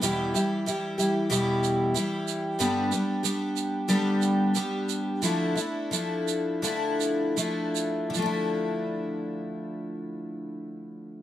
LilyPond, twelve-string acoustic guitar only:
\new Staff \with { instrumentName = "Twelve-string acoustic guitar" } { \time 4/4 \key d \dorian \tempo 4 = 88 <e, b, e g e' g'>8 <e g e' g'>8 <e g e' g'>8 <e g e' g'>8 <e, b, e g e' g'>4 <e g e' g'>4 | <g, d g b d' g'>8 <g b d' g'>8 <g b d' g'>4 <g, d g b d' g'>4 <g b d' g'>4 | <d f a d' e'>8 <a d' e'>8 <f a d' e'>4 <d f a d' e'>4 <f a d' e'>4 | <d f a d' e'>1 | }